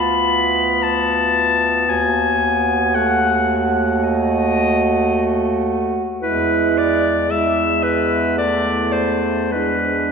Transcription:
Already playing: bass clarinet D2, tenor saxophone B3, alto saxophone F4, clarinet B5
0.83 clarinet A5
1.88 bass clarinet D#2, alto saxophone F#4, clarinet G#5
2.95 tenor saxophone A3, clarinet F#5
4.03 clarinet D#5
6.22 bass clarinet E2, tenor saxophone G#3, alto saxophone E4, clarinet B4
6.77 clarinet D5
7.29 tenor saxophone G#3, alto saxophone E4, clarinet E5
7.83 clarinet B4
8.38 tenor saxophone A3, alto saxophone E4, clarinet D5
8.92 clarinet C5
9.51 tenor saxophone G#3, clarinet B4
9.55 alto saxophone D4

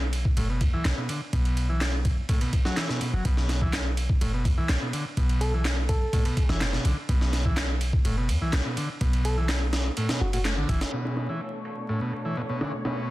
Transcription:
Already playing: 808-style bass B1
0.13 ride
0.25 kick
0.37 808-style bass F#1, transistor combo organ A2, ride
0.49 transistor combo organ B2
0.61 808-style bass E2, kick, ride
0.73 808-style bass B1, transistor combo organ E3
0.85 808-style bass B1, transistor combo organ B2, snare, clap, ride
0.97 transistor combo organ B2
1.09 transistor combo organ D3, ride
1.33 808-style bass B1, transistor combo organ B2, kick, ride
1.45 ride
1.57 ride
1.69 transistor combo organ E3
1.81 snare, clap, ride
2.05 kick, ride
2.29 transistor combo organ A2, kick, ride
2.41 transistor combo organ B2, ride
2.53 kick, ride
2.65 transistor combo organ F#3, snare
2.77 transistor combo organ E3, snare, clap, ride
2.89 transistor combo organ B2, snare
3.01 transistor combo organ B2, ride
3.13 808-style bass F#1, transistor combo organ F#3
3.25 808-style bass B1, transistor combo organ B2, kick, ride
3.37 snare
3.49 snare, ride
3.61 transistor combo organ E3, kick
3.73 snare, clap, ride
3.97 ride
4.09 kick
4.21 808-style bass F#1, transistor combo organ A2, ride
4.34 transistor combo organ B2
4.45 808-style bass E2, kick, ride
4.58 808-style bass B1, transistor combo organ E3
4.69 808-style bass B1, transistor combo organ B2, snare, clap, ride
4.82 transistor combo organ B2
4.93 transistor combo organ D3, ride
5.17 808-style bass B1, transistor combo organ B2, kick, ride
5.29 ride
5.41 soft synth lead A4, ride
5.54 transistor combo organ E3
5.65 snare, clap, ride
5.89 soft synth lead A4, kick, ride
6.13 transistor combo organ A2, kick, ride
6.25 transistor combo organ B2, ride
6.37 kick, ride
6.49 808-style bass F#1, transistor combo organ E3, snare
6.61 transistor combo organ B2, snare, clap, ride
6.73 transistor combo organ B2, snare
6.85 808-style bass B1, transistor combo organ D3, ride
7.09 808-style bass B1, transistor combo organ B2, kick, ride
7.21 snare
7.33 snare, ride
7.45 transistor combo organ E3, kick
7.57 snare, clap, ride
7.81 ride
7.93 kick
8.05 808-style bass F#1, transistor combo organ A2, ride
8.18 transistor combo organ B2
8.29 808-style bass E2, ride
8.41 808-style bass B1, transistor combo organ E3
8.53 808-style bass B1, transistor combo organ B2, snare, clap, ride
8.65 transistor combo organ B2
8.77 transistor combo organ D3, ride
9.01 808-style bass B1, transistor combo organ B2, kick, ride
9.13 ride
9.25 soft synth lead A4, ride
9.38 transistor combo organ E3
9.49 snare, clap, ride
9.73 snare, ride
9.97 transistor combo organ A2, ride
10.09 transistor combo organ B2, snare, ride
10.21 808-style bass F#1, soft synth lead F#4
10.33 transistor combo organ A2, soft synth lead F#4, ride
10.45 transistor combo organ A3, snare, clap, ride
10.57 808-style bass A1, transistor combo organ D3
10.69 808-style bass F#1, transistor combo organ E3, kick, ride
10.81 snare, ride
10.93 transistor combo organ B2, string section B2 A3 D4 C#5, ride
11.05 snare
11.17 snare, ride
11.29 transistor combo organ E3
11.41 ride
11.65 ride
11.89 transistor combo organ A2, ride
12.01 transistor combo organ B2
12.13 ride
12.25 transistor combo organ E3
12.37 transistor combo organ B2, ride
12.49 transistor combo organ B2
12.61 transistor combo organ D3, snare, ride
12.85 transistor combo organ B2, snare, ride
12.97 ride

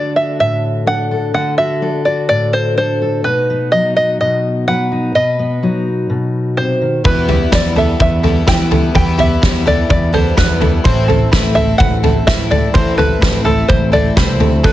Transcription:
Already playing: steel-string acoustic guitar D3 D4 F#4 A4, five-string banjo D5
0.16 steel-string acoustic guitar F#4, five-string banjo E5
0.39 steel-string acoustic guitar A2, five-string banjo E5
0.86 steel-string acoustic guitar D4 A4, five-string banjo F#5
1.11 steel-string acoustic guitar A4
1.34 steel-string acoustic guitar D3 A4, five-string banjo F#5
1.58 steel-string acoustic guitar F#4, five-string banjo E5
1.82 steel-string acoustic guitar D4 A4
2.05 steel-string acoustic guitar F#4, five-string banjo D5
2.29 steel-string acoustic guitar A2, five-string banjo D5
2.53 five-string banjo C5
2.77 steel-string acoustic guitar D4 A4, five-string banjo C5
3.02 steel-string acoustic guitar A4
3.24 steel-string acoustic guitar B2 D#4, five-string banjo B4
3.50 steel-string acoustic guitar B3
3.72 steel-string acoustic guitar F#3 D#4, five-string banjo D#5
3.97 steel-string acoustic guitar B3, five-string banjo D#5
4.21 steel-string acoustic guitar B2, five-string banjo D#5
4.67 steel-string acoustic guitar F#3 B4, five-string banjo F#5
4.92 steel-string acoustic guitar D#4
5.15 steel-string acoustic guitar B2 B4, five-string banjo D#5
5.39 steel-string acoustic guitar B3
5.63 steel-string acoustic guitar F#3 D#4
6.10 steel-string acoustic guitar B2
6.57 steel-string acoustic guitar C3, five-string banjo C5
6.82 steel-string acoustic guitar D#3
7.04 twelve-string acoustic guitar E2 B2 E3 G3 B3 E4, picked electric bass E2, steel-string acoustic guitar E2 E4, ukulele B4, five-string banjo B4, kick, floor tom
7.28 twelve-string acoustic guitar E3 G3 B3 E4, steel-string acoustic guitar B3, ukulele G4, floor tom
7.52 picked electric bass E2, twelve-string acoustic guitar E3 G3 B3 E4, steel-string acoustic guitar G3 E4, ukulele B4, five-string banjo D5, kick, snare, floor tom
7.76 twelve-string acoustic guitar E3 G3 B3 E4, steel-string acoustic guitar B3, ukulele A4, five-string banjo E5, floor tom
8.00 steel-string acoustic guitar E2, picked electric bass E2, ukulele B4, five-string banjo E5, kick, floor tom
8.23 twelve-string acoustic guitar E3 G3 B3 E4, ukulele A4, floor tom
8.47 twelve-string acoustic guitar E3 G3 B3 E4, picked electric bass E3, steel-string acoustic guitar G3 B4, ukulele B4, five-string banjo G5, kick, snare, floor tom
8.71 steel-string acoustic guitar E4, ukulele A4, floor tom
8.94 twelve-string acoustic guitar E2 B2 E3 G3 B3 E4, steel-string acoustic guitar E2 B4, picked electric bass E2, ukulele B4, five-string banjo G5, kick, floor tom
9.18 twelve-string acoustic guitar E3 G3 B3 E4, steel-string acoustic guitar B3, ukulele G4, five-string banjo E5, floor tom
9.42 picked electric bass E2, twelve-string acoustic guitar E3 G3 B3 E4, steel-string acoustic guitar G3 E4, ukulele B4, kick, snare, floor tom
9.66 twelve-string acoustic guitar E3 G3 B3 E4, steel-string acoustic guitar B3, ukulele A4, five-string banjo D5, floor tom
9.89 steel-string acoustic guitar E2, picked electric bass E2, ukulele B4, five-string banjo D5, kick, floor tom
10.13 twelve-string acoustic guitar E3 G3 B3 E4, ukulele A4, five-string banjo C5, floor tom
10.37 picked electric bass E2, twelve-string acoustic guitar E3 G3 B3 E4, steel-string acoustic guitar G3 E4, ukulele B4, five-string banjo B4, kick, snare, floor tom
10.61 steel-string acoustic guitar E4, ukulele A4, floor tom
10.84 picked electric bass A1, steel-string acoustic guitar A2 A4, twelve-string acoustic guitar A2 E3 A3 C4 E4, ukulele C5, five-string banjo C5, kick, floor tom
11.08 twelve-string acoustic guitar A3 C4 E4, steel-string acoustic guitar C4, ukulele A4, floor tom
11.32 picked electric bass A1, twelve-string acoustic guitar E3 A3 C4 E4, steel-string acoustic guitar A3 E4, ukulele B4, kick, snare, floor tom
11.55 steel-string acoustic guitar C4, twelve-string acoustic guitar C4 E4, ukulele A4, five-string banjo E5, floor tom
11.78 picked electric bass A1, steel-string acoustic guitar E2, ukulele B4, five-string banjo F#5, kick, floor tom
12.03 twelve-string acoustic guitar A3 C4 E4, ukulele A4, floor tom
12.26 picked electric bass A2, twelve-string acoustic guitar E3 C4 E4, steel-string acoustic guitar A3 A4, ukulele B4, five-string banjo E5, kick, snare, floor tom
12.50 steel-string acoustic guitar E4, ukulele A4, five-string banjo D5, floor tom
12.74 picked electric bass A1, steel-string acoustic guitar A2 A4, twelve-string acoustic guitar A2 E3 A3 C4 E4, ukulele C5, five-string banjo C5, kick, floor tom
12.98 twelve-string acoustic guitar A3 C4 E4, steel-string acoustic guitar C4, ukulele A4, five-string banjo B4, floor tom
13.21 picked electric bass A1, twelve-string acoustic guitar E3 A3 C4 E4, steel-string acoustic guitar A3, ukulele B4, kick, snare, floor tom
13.44 twelve-string acoustic guitar A3 C4 E4, steel-string acoustic guitar C4, ukulele A4, five-string banjo A4, floor tom
13.68 picked electric bass A1, steel-string acoustic guitar E2, ukulele B4, five-string banjo C5, kick, floor tom
13.92 twelve-string acoustic guitar A3 C4 E4, ukulele A4, five-string banjo D5, floor tom
14.15 picked electric bass C2, steel-string acoustic guitar B2, twelve-string acoustic guitar E3 A3 C4 E4, ukulele B4, five-string banjo C5, kick, snare, floor tom
14.40 picked electric bass D2, steel-string acoustic guitar C3, ukulele A4, floor tom
14.63 picked electric bass D2, twelve-string acoustic guitar D3 F#3 A3 D4 E4, ukulele A4, five-string banjo B4, kick, floor tom

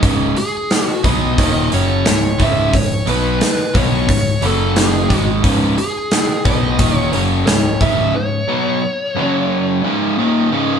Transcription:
0.02 picked electric bass C#1, overdriven electric guitar C#2 G#2 C#3, kick, open hi-hat
0.36 lead electric guitar G#4, muted distorted electric guitar stroke, muted overdriven electric guitar stroke, muted picked electric bass stroke, open hi-hat
0.71 snare, open hi-hat
0.86 lead electric guitar F#4
1.03 picked electric bass B1, overdriven electric guitar B2 F#3 B3, lead electric guitar D#5, kick, open hi-hat
1.38 picked electric bass D#1, overdriven electric guitar D#2 A#2 D#3, kick, open hi-hat
1.71 picked electric bass F#1, overdriven electric guitar F#2 C#3 F#3, lead electric guitar C#5, open hi-hat
2.05 picked electric bass C#1, overdriven electric guitar C#2 G#2, lead electric guitar C#5, snare, open hi-hat
2.38 picked electric bass C#1, overdriven electric guitar C#2 G#2 C#3, kick, open hi-hat
2.42 lead electric guitar E5
2.72 picked electric bass C#1, overdriven electric guitar C#2 G#2, kick, open hi-hat
2.76 lead electric guitar C#5
3.06 picked electric bass B1, overdriven electric guitar B2 F#3 B3, lead electric guitar B4, open hi-hat
3.41 snare, open hi-hat
3.74 picked electric bass B1, overdriven electric guitar B2 F#3 B3, lead electric guitar C#5, kick, open hi-hat
4.08 picked electric bass C#1, overdriven electric guitar C#2 G#2, kick, open hi-hat
4.41 picked electric bass F#1, overdriven electric guitar F#2 C#3 F#3, open hi-hat
4.46 lead electric guitar A4
4.76 lead electric guitar G#4, snare, open hi-hat
5.09 picked electric bass G#1, overdriven electric guitar G#2 D#3 G#3, kick, snare, open hi-hat
5.43 picked electric bass C#1, overdriven electric guitar C#2 G#2 C#3, kick, open hi-hat
5.77 lead electric guitar G#4, muted overdriven electric guitar stroke, muted picked electric bass stroke, muted distorted electric guitar stroke, open hi-hat
6.11 snare, open hi-hat
6.45 picked electric bass B1, overdriven electric guitar B2 F#3 B3, lead electric guitar D#5, kick, open hi-hat
6.79 picked electric bass D#1, overdriven electric guitar D#2 A#2 D#3, kick, open hi-hat
6.99 lead electric guitar C#5
7.12 picked electric bass F#1, overdriven electric guitar F#2 C#3 F#3, lead electric guitar C#5, open hi-hat
7.47 picked electric bass C#1, overdriven electric guitar C#2 G#2, lead electric guitar C#5, snare, open hi-hat
7.81 picked electric bass C#1, overdriven electric guitar C#2 G#2 C#3, lead electric guitar E5, kick, open hi-hat
8.15 overdriven electric guitar C#2 G#2, lead electric guitar C#5
8.47 overdriven electric guitar B2 F#3 B3
9.16 overdriven electric guitar F#2 C#3 F#3
9.83 overdriven electric guitar C#2 G#2 C#3
10.18 overdriven electric guitar D#2 A#2 D#3
10.51 overdriven electric guitar C#2 G#2 C#3

